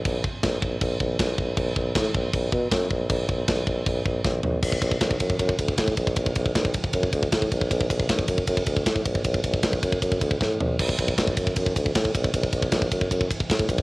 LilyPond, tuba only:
\new Staff \with { instrumentName = "Tuba" } { \clef bass \time 4/4 \key b \minor \tempo 4 = 156 b,,8 r8 b,,8 b,,8 b,,8 b,,8 b,,8 b,,8 | b,,8 b,,8 a,8 b,,8 b,,8 b,8 fis,8 b,,8 | b,,8 b,,8 b,,8 b,,8 b,,8 b,,8 b,,8 b,,8 | b,,8 b,,8 b,,8 fis,8 fis,8 d,8 a,8 b,,8 |
b,,8 b,,8 b,,8 r8 fis,8 d,8 a,8 b,,8 | b,,8 b,,8 b,,8 fis,8 fis,8 d,8 a,8 b,,8 | b,,8 b,,8 b,,8 fis,8 fis,8 d,8 a,8 b,,8 | b,,8 b,,8 b,,8 fis,8 fis,8 d,8 a,8 b,,8 |
b,,8 b,,8 b,,8 fis,8 fis,8 r8 a,8 b,,8 | }